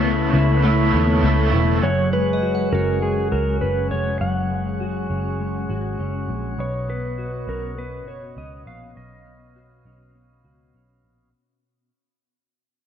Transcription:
Already playing: C#2 C#3 A3 B3 E4 A4 C#5 B5
0.04 B3
0.34 C#2 E4
0.62 A3 B3 E4
0.67 A4
0.93 D#2 B3
1.23 C#2 A3 B3 E4
1.27 A4
1.53 E1 E4
1.82 F#1 F#3 G#4 C#5 F#5
2.13 G#3 B4
2.33 D#5
2.42 F#4
2.55 F#5
2.72 F#1 C#4 F#4 A#4
3.02 G#3 G#4
3.31 C#2 F#4 A#4
3.61 F#1 C#4 B4
3.91 F1 G#3 C#5
4.21 F#1 F#3 F#5
4.51 G#3
4.80 F#4
5.10 F#1 C#4
5.40 G#3
5.69 G#1 F#4
5.99 F#1 C#4
6.29 A#1 G#3
6.58 B1 B2 B4 C#5 D#5
6.88 B3 B4
7.18 F#4
7.48 B1 C#4 A#4
7.77 B3 B4
8.07 F#1 F#4 C#5
8.37 C#2 C#4 D#5
8.66 A#1 B3 F5
8.96 B1 B2 D#5 F5
9.26 B3
9.56 F#4
9.85 B1 C#4
10.14 B3
10.44 C#2 F#4
10.74 B1 C#4
11.04 A#1 B3

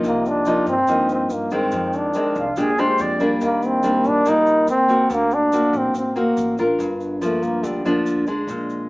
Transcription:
Already playing: F3 A#3 D#4
0.03 C2 C3 A#3, shaker
0.25 D4, shaker
0.46 F3 A#3 D#4, shaker
0.66 G2 C4, shaker
0.87 G2 F3 A#3 D#4, shaker
1.09 C4, shaker
1.30 G2 A#3, shaker
1.51 D#3 G#3 C4, shaker
1.71 F2, shaker
1.93 D4, shaker
2.14 D#3 G#3 C4, shaker
2.35 C2 F4, shaker
2.56 A#1 A#2 G#3 D4 G4 G#4, shaker
2.78 G#3 D4 G4 C5, shaker
2.98 F2 D5, shaker
3.20 G3 A#3 D4, shaker
3.41 D#2 D#3 A#3, shaker
3.62 shaker
3.66 C4
3.83 G3 A#3 D4, shaker
4.04 A#1, shaker
4.09 D4
4.25 A#1 A#2 G3 A#3 D#4, shaker
4.46 shaker
4.67 D#2 C4, shaker
4.88 A#3 C4 F#4, shaker
5.10 D2 D3 A#3, shaker
5.31 D4, shaker
5.52 A#3 C4 F#4, shaker
5.73 A1, shaker
5.77 C4
5.94 A1 C4, shaker
6.16 A#3 C4 F#4, shaker
6.37 A1, shaker
6.58 D4 F4 A#4, shaker
6.78 G1 G2, shaker
7.00 shaker
7.21 F3 A3 A#3 D4, shaker
7.42 D2 A#3, shaker
7.63 D2 D3 G3, shaker
7.85 D2 F3 A#3 D4, shaker
8.06 shaker
8.27 G#3 D4, shaker
8.47 A#1 A#2, shaker
8.70 shaker

